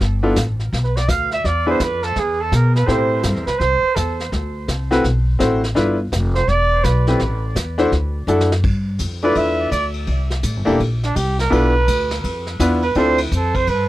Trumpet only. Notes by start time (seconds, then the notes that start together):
0.84 B4
0.96 D5
1.09 F5
1.33 E5
1.45 D5
1.69 C5
1.83 B4
2.03 A4
2.19 G#4
2.41 A4
2.55 A#4
2.75 B4
2.86 C5
3.46 B4
3.59 C5
3.95 A4
6.35 C5
6.49 D5
6.84 B4
9.23 D5
9.37 E5
9.72 D5
11.05 D4
11.16 G4
11.40 A#4
11.52 B4
12.83 B4
12.97 C5
13.22 E4
13.35 A4
13.56 C5
13.69 B4